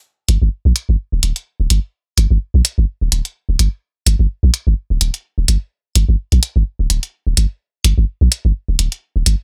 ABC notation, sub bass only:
X:1
M:4/4
L:1/16
Q:"Swing 16ths" 1/4=127
K:Gm
V:1 name="Sub bass" clef=bass
z2 G,,, G,,, z B,,, z G,,, z D,,, D,,, z2 D,,, G,,, z | z2 G,,, G,,, z B,,, z G,,, z D,,, D,,, z2 D,,, G,,, z | z2 G,,, G,,, z B,,, z G,,, z D,,, D,,, z2 D,,, G,,, z | z2 G,,, G,,, z B,,, z G,,, z D,,, D,,, z2 D,,, G,,, z |
z2 G,,, G,,, z B,,, z G,,, z D,,, D,,, z2 D,,, G,,, z |]